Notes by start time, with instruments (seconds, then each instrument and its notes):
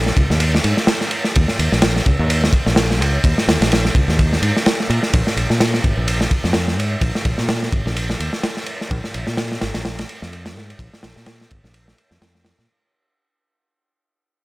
Already playing: fingered electric bass A#1
0.06 snare
0.17 fingered electric bass C#2, kick, ride
0.30 fingered electric bass D#2, snare
0.40 ride
0.55 snare
0.64 fingered electric bass G#2, ride
0.77 snare
0.87 snare, ride
1.01 snare
1.11 ride
1.24 snare
1.35 fingered electric bass D#2, kick, ride
1.48 snare
1.59 fingered electric bass D#2, ride
1.72 fingered electric bass A#1, snare
1.82 snare, ride
1.96 snare
2.06 fingered electric bass C#2, kick, ride
2.19 fingered electric bass D#2
2.30 ride
2.44 snare
2.53 kick, ride
2.66 fingered electric bass A#1, snare
2.76 snare, ride
2.91 snare
3.01 fingered electric bass C#2, ride
3.24 fingered electric bass D#2, kick, ride
3.38 snare
3.48 fingered electric bass D#2, snare, ride
3.61 fingered electric bass A#1, snare, ride
3.72 snare, ride
3.85 snare
3.95 fingered electric bass C#2, kick, ride
4.08 fingered electric bass D#2, snare
4.19 kick, ride
4.33 snare
4.42 fingered electric bass G#2, ride
4.57 snare
4.66 snare, ride
4.80 snare
4.90 fingered electric bass A#2, ride
5.03 snare
5.13 fingered electric bass A#1, kick, ride
5.27 snare
5.36 fingered electric bass A#1, ride
5.50 fingered electric bass A#2, snare
5.60 snare, ride
5.74 snare
5.84 fingered electric bass G#1, kick, ride
5.97 fingered electric bass A#1
6.08 ride
6.21 snare
6.31 kick, ride
6.44 fingered electric bass F2, snare
6.53 snare, ride
6.68 snare
6.78 fingered electric bass G#2, ride
7.01 fingered electric bass A#1, kick, ride
7.15 snare
7.25 fingered electric bass A#1, kick, ride
7.38 fingered electric bass A#2, snare
7.49 snare, ride
7.63 snare
7.72 fingered electric bass G#1, kick, ride
7.86 fingered electric bass A#1, snare
7.96 ride
8.10 snare
8.20 fingered electric bass D#2, ride
8.33 snare
8.43 snare, ride
8.57 snare
8.66 ride
8.81 snare
8.91 fingered electric bass A#1, kick, ride
9.04 snare
9.14 fingered electric bass A#1, ride
9.27 fingered electric bass A#2, snare
9.37 snare, ride
9.52 snare
9.61 fingered electric bass G#1, snare, ride
9.74 fingered electric bass A#1, snare, ride
9.85 snare, ride
9.99 snare, ride
10.09 ride
10.22 fingered electric bass F2, snare
10.33 ride
10.46 snare, ride
10.56 fingered electric bass G#2, snare
10.70 ride
10.79 fingered electric bass A#1, kick, ride
10.94 snare
11.03 fingered electric bass A#1, snare, ride
11.16 fingered electric bass A#2, snare
11.26 snare, ride
11.41 snare
11.51 fingered electric bass G#1, kick, ride
11.64 fingered electric bass A#1, snare
11.74 ride
11.88 snare
11.98 ride
12.11 fingered electric bass F2, snare
12.21 fingered electric bass F2, snare, ride
12.35 snare
12.45 snare, ride
12.59 fingered electric bass A#2, snare